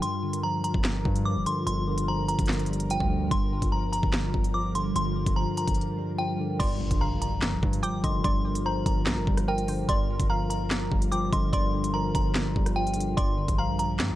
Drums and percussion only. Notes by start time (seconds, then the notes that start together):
0.03 closed hi-hat
0.33 closed hi-hat
0.64 closed hi-hat
0.74 kick
0.84 snare, clap, closed hi-hat
1.05 kick
1.16 closed hi-hat
1.46 closed hi-hat
1.67 closed hi-hat
1.98 closed hi-hat
2.29 closed hi-hat
2.39 kick, closed hi-hat
2.46 snare, clap, closed hi-hat
2.52 closed hi-hat
2.59 closed hi-hat
2.66 closed hi-hat
2.73 closed hi-hat
2.80 closed hi-hat
2.90 closed hi-hat
3.00 kick
3.31 kick, closed hi-hat
3.62 kick, closed hi-hat
3.93 closed hi-hat
4.03 kick
4.13 snare, clap, closed hi-hat
4.34 kick
4.44 closed hi-hat
4.75 closed hi-hat
4.96 closed hi-hat
5.26 kick, closed hi-hat
5.57 closed hi-hat
5.68 kick, closed hi-hat
5.74 closed hi-hat
5.81 closed hi-hat
6.60 kick, closed hi-hat, crash
6.91 kick, closed hi-hat
7.22 closed hi-hat
7.42 snare, clap, closed hi-hat
7.63 kick
7.73 closed hi-hat
7.83 closed hi-hat
8.04 kick, closed hi-hat
8.24 kick, closed hi-hat
8.55 closed hi-hat
8.86 kick, closed hi-hat
9.06 snare, clap, closed hi-hat
9.27 kick
9.37 cross-stick, closed hi-hat
9.58 closed hi-hat
9.68 closed hi-hat, open hi-hat
9.89 kick, closed hi-hat
10.20 kick, closed hi-hat
10.50 closed hi-hat
10.70 snare, clap, closed hi-hat
10.92 kick
11.02 closed hi-hat
11.12 closed hi-hat
11.33 kick, closed hi-hat
11.53 kick, closed hi-hat
11.84 closed hi-hat
12.15 kick, closed hi-hat
12.35 snare, clap, closed hi-hat
12.56 kick
12.66 cross-stick, closed hi-hat
12.87 closed hi-hat
12.94 closed hi-hat
13.00 closed hi-hat
13.18 kick, closed hi-hat
13.48 kick, closed hi-hat
13.79 closed hi-hat
13.99 snare, clap, closed hi-hat